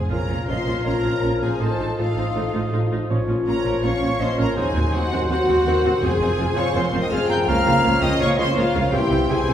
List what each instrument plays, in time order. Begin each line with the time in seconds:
Already playing: violin section G#4
0.00 double bass section F2, viola section G#3
0.10 double bass section A#1, cello section A#2, bassoon F3, viola section C#4 F4, violin section A#4 A#5, clarinet A#4, french horn section A#4, flute C#5, oboe F5
0.29 double bass section A#1, cello section A#2, viola section C#4 F4
0.48 double bass section A#1, cello section A#2, viola section C#4 F4, french horn section F4, clarinet C5, violin section C5 C6, flute D#5
0.67 double bass section A#1, cello section A#2, viola section C#4 F4
0.85 double bass section A#1, cello section A#2, viola section C#4 F4, violin section A#4 A#5, clarinet A#4, flute C#5
1.04 double bass section A#1, cello section A#2, viola section C#4 F4
1.22 double bass section A#1, cello section A#2, viola section C#4 F4
1.40 double bass section A#1, cello section A#2, viola section C#4 F4, violin section G#4 G#5, clarinet G#4, flute C5
1.60 double bass section A1, cello section A2, viola section D#4 F4, french horn section A4, violin section A4 A5, clarinet A4, flute C5, oboe D#5
1.79 double bass section A1, cello section A2, viola section D#4 F4
1.98 double bass section A1, cello section A2, viola section D#4 F4, violin section F4 F5, clarinet F4, flute A4, french horn section C5
2.16 double bass section A1, cello section A2, viola section D#4 F4
2.35 double bass section A1, cello section A2, viola section D#4 F4, french horn section A4
2.53 double bass section A1, cello section A2, viola section D#4 F4
2.72 double bass section A1, cello section A2, viola section D#4 F4, french horn section F4
2.91 double bass section A1, cello section A2, viola section D#4 F4
3.09 double bass section A#1, cello section A#2, bassoon F3, viola section C#4 F4, french horn section F4, oboe C#5
3.28 double bass section A#1, cello section A#2, viola section C#4 F4
3.46 double bass section A#1, cello section A#2, viola section C#4 F4, clarinet A#4, violin section A#4 A#5, flute C#5
3.65 double bass section A#1, cello section A#2, viola section C#4 F4
3.82 double bass section A#1, cello section A#2, viola section C#4 F4, clarinet C#5, violin section C#5 C#6, flute F5
4.01 double bass section A#1, cello section A#2, viola section C#4 F4
4.19 double bass section A#1, cello section A#2, viola section C#4 F4, clarinet C5, violin section C5 C6, flute D#5
4.38 double bass section A#1, cello section A#2, viola section C#4 F4, clarinet A#4, violin section A#4 A#5, flute C#5
4.56 cello section D#2, double bass section D#2, bassoon F#3, viola section C4 F#4, french horn section D#4, clarinet G#4, violin section G#4 G#5, oboe C5, flute C5
4.75 cello section D#2, double bass section D#2, viola section C4 F#4
4.93 cello section D#2, double bass section D#2, viola section C4 F#4, clarinet F#4, violin section F#4 F#5, flute C5
5.12 cello section D#2, double bass section D#2, viola section C4 F#4
5.29 cello section D#2, double bass section D#2, viola section C4 F#4, clarinet F#4, french horn section F#4, violin section F#4 F#5, flute C5
5.48 double bass section D#2, cello section D#2, viola section C4 F#4
5.65 cello section D#2, double bass section D#2, viola section C4 F#4, french horn section A#4
5.84 cello section D#2, double bass section D#2, viola section C4 F#4
6.02 double bass section F1, cello section F2, timpani F2, bassoon F3, viola section C4 F4, french horn section G#4, clarinet G#4, violin section G#4 G#5, flute C5
6.20 double bass section F1, cello section F2, viola section C4 F4
6.38 double bass section F1, cello section F2, viola section C4 F4, french horn section C5
6.56 double bass section F1, cello section F2, viola section C4 F4, clarinet C#5, violin section C#5 C#6, flute F5
6.74 double bass section F1, cello section F2, viola section C4 F4, french horn section A#4, violin section C5 C6, clarinet C5, flute F5
6.93 double bass section F1, cello section F2, viola section C4 F4
7.01 violin section D#5 D#6, clarinet D#5, flute G5
7.10 double bass section F1, cello section F2, viola section C4 F4, french horn section G#4, violin section F5 F6, clarinet F5, flute G#5
7.28 double bass section F1, cello section F2, viola section C4 F4, violin section G5 G6, clarinet G5, flute A#5
7.46 double bass section C#2, cello section C#3, viola section A#3 F4, french horn section A#4, oboe C#5, violin section F5 F6, clarinet F5, flute A#5
7.65 double bass section C#2, cello section C#3, viola section A#3 F4
7.83 double bass section C#2, cello section C#3, viola section A#3 F4, french horn section C#4
8.01 double bass section C#2, cello section C#3, viola section A#3 F4, violin section D#5 D#6, clarinet D#5, flute G5
8.19 double bass section C#2, cello section C#3, viola section A#3 F4, violin section C#5 C#6, clarinet C#5, flute F5
8.37 double bass section C#2, cello section C#3, viola section A#3 F4, clarinet C5, violin section C5 C6, flute D#5
8.55 double bass section C#2, cello section C#3, viola section A#3 F4, french horn section F4, clarinet F4, violin section F4 F5, flute A#4
8.73 double bass section C#2, cello section C#3, viola section A#3 F4
8.92 double bass section C2, cello section C3, bassoon E3, viola section G3 E4, french horn section E4, clarinet G4, violin section G4 G5, flute C5, oboe C5
9.11 double bass section C2, cello section C3, viola section G3 E4
9.29 double bass section C2, cello section C3, viola section G3 E4, clarinet G#4, violin section G#4 G#5, flute C5, french horn section C5
9.48 double bass section C2, cello section C3, viola section G3 E4